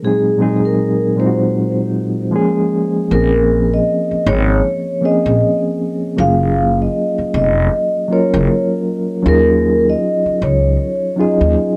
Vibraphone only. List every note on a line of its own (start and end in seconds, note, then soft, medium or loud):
0.05 0.61 G#4 medium
0.65 1.16 A#4 medium
1.20 1.77 C5 medium
3.13 3.69 A#4 medium
3.74 4.24 D#5 medium
4.28 5.04 C#5 medium
5.05 5.62 D#5 medium
6.20 6.77 F5 medium
6.82 7.32 D#5 medium
7.36 8.12 D#5 medium
8.13 8.69 C#5 medium
9.28 9.85 A#4 loud
9.90 10.39 D#5 medium
10.43 11.15 C#5 medium
11.21 11.77 D#5 medium